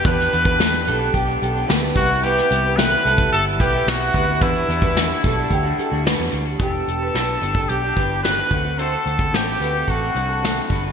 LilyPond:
<<
  \new Staff \with { instrumentName = "Clean electric guitar" } { \time 4/4 \key e \minor \tempo 4 = 110 b'8 r16 b'16 r8 a'8 g'8 a'16 r16 b'8. r16 | b'8 r16 b'16 r8 a'8 r8 b'8 r8 b'16 r16 | b'8 r16 b'16 r8 a'8 g'8 a'16 r16 b'8. r16 | g'8 r16 b'16 b'16 r8 a'16 g'8 b'16 r4 r16 |
c''16 r8 a'8 r16 b'16 r16 a'16 r8 a'8 r8. | }
  \new Staff \with { instrumentName = "Trumpet" } { \time 4/4 \key e \minor b'2 r4. fis'8 | g'4 b'4 a'8 g'8 fis'4 | e'2. r4 | a'2 g'4 b'4 |
a'4 g'4 fis'4. r8 | }
  \new Staff \with { instrumentName = "Clean electric guitar" } { \time 4/4 \key e \minor <e b d' g'>8 <e b d' g'>8 <e b d' g'>8 <e b d' g'>16 <b d' g'>8 <b d' g'>8 <b d' g'>16 <e b d' g'>8 <c g b e'>16 <g b e'>16 | <c g b e'>8 <c g b e'>8 <c g b e'>8 <c g b e'>16 <g b e'>8 <g b e'>8 <g b e'>16 <c g b e'>8 <c g b e'>16 <g b e'>16 | <e g d' fis'>8 <e g d' fis'>8 <e g d' fis'>8 <e g d' fis'>16 <g d' fis'>8 <g d' fis'>8 <g d' fis'>16 <e g d' fis'>8 <e g d' fis'>16 <g d' fis'>16 | <e b d' g'>16 <b d' g'>8. <e b d' g'>8 <e b d' g'>16 <b d' g'>8 <b d' g'>16 <e b d' g'>8 <e b d' g'>8 <d a c' fis'>16 <a c' fis'>16 |
<d a c' fis'>16 <a c' fis'>8. <d a c' fis'>8 <d a c' fis'>16 <a c' fis'>8 <a c' fis'>16 <d a c' fis'>8 <d a c' fis'>8 <g d' fis' b'>16 <d' fis' b'>16 | }
  \new Staff \with { instrumentName = "Fingered electric bass" } { \clef bass \time 4/4 \key e \minor e,8 e,4 b,,8 b,,8 b,,8 d,8 c,8~ | c,8 c,4 c,8 g,,8 b,,8 b,,8 d,8 | e,8 e,4 b,,8 d,8 r16 d,8 e,16 d,8 | e,,8 e,,8 b,,8 g,,8 b,,8 g,,4 d,8~ |
d,8 d,8 a,,8 d,8 a,,8 c,4 g,,8 | }
  \new DrumStaff \with { instrumentName = "Drums" } \drummode { \time 4/4 <hh bd>16 sn16 hh16 bd16 <hh sn>8 hh8 <hh bd>8 hh8 <hh sn>8 <hho bd>8 | hh16 sn16 hh8 <hh sn>8 hh16 bd16 hh8 <hh bd>8 <hh sn>8 <hh bd>8 | <hh bd>8 hh16 bd16 <hh sn>8 <hh bd>8 <hh bd>8 hh8 <hh sn>8 hh8 | <hh bd>8 hh8 <hh sn>8 hh16 bd16 hh8 <hh bd>8 <hh sn>8 <hh bd>8 |
hh8 hh16 bd16 <hh sn>8 hh8 <hh bd>8 hh8 <hh sn>8 <hh bd>8 | }
>>